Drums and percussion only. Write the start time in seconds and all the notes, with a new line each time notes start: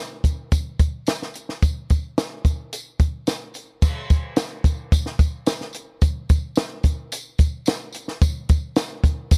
0.24 kick, closed hi-hat, tambourine
0.52 kick, closed hi-hat, tambourine
0.79 kick, closed hi-hat, tambourine
1.07 snare, closed hi-hat, tambourine
1.22 snare
1.34 closed hi-hat, tambourine
1.49 snare
1.62 kick, closed hi-hat, tambourine
1.90 kick, closed hi-hat, tambourine
2.18 snare, closed hi-hat, tambourine
2.45 kick, closed hi-hat, tambourine
2.73 closed hi-hat, tambourine
3.00 kick, closed hi-hat, tambourine
3.27 snare, closed hi-hat, tambourine
3.54 closed hi-hat, tambourine
3.82 kick, crash, tambourine
4.10 kick, closed hi-hat, tambourine
4.36 snare, closed hi-hat, tambourine
4.64 kick, closed hi-hat, tambourine
4.92 kick, closed hi-hat, tambourine
5.06 snare
5.19 kick, closed hi-hat, tambourine
5.46 snare, closed hi-hat, tambourine
5.61 snare
5.73 closed hi-hat, tambourine
6.02 kick, closed hi-hat, tambourine
6.29 kick, closed hi-hat, tambourine
6.56 snare, closed hi-hat, tambourine
6.83 kick, closed hi-hat, tambourine
7.12 closed hi-hat, tambourine
7.38 kick, closed hi-hat, tambourine
7.66 snare, closed hi-hat, tambourine
7.93 closed hi-hat, tambourine
8.08 snare
8.21 kick, closed hi-hat, tambourine
8.49 kick, closed hi-hat, tambourine
8.76 snare, closed hi-hat, tambourine
9.04 kick, closed hi-hat, tambourine
9.31 kick, closed hi-hat, tambourine